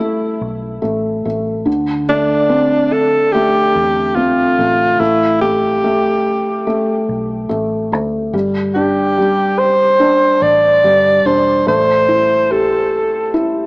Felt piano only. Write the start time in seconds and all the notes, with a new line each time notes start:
0.00 A3
0.82 A3
1.25 A3
1.66 D3
2.09 A3
2.49 C4
3.34 A3
4.17 C4
4.59 A3
5.00 A3
5.42 A3
5.84 A3
6.67 A3
7.49 A3
7.92 A3
8.33 G3
8.76 D4
9.18 G3
10.00 D4
10.84 G3
11.26 D4
11.67 A3
12.09 E4
12.51 G4
13.34 E4